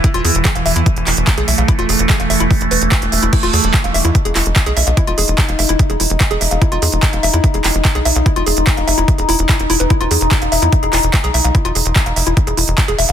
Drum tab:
CC |----------------|----------------|x---------------|----------------|
HH |xxoxxxoxxxoxxxox|xxoxxxoxoxoxxxox|xxoxxxoxxxoxxxox|xxoxxxoxxxoxxxox|
CP |----x-----x-x---|----x-------x---|----x-----x-x---|----x-------x---|
BD |o---o---o---o---|o---o---o---o---|o---o---o---o---|o---o---o---o---|

CC |----------------|----------------|----------------|----------------|
HH |xxoxxxoxxxoxxxox|xxoxxxoxxxoxxxox|xxoxxxoxxxoxxxox|xxoxxxoxxxoxxxox|
CP |----x-----x-x---|----x-------x---|----x-----x-x---|----x-------x---|
BD |o---o---o---o---|o---o---o---o---|o---o---o---o---|o---o---o---o---|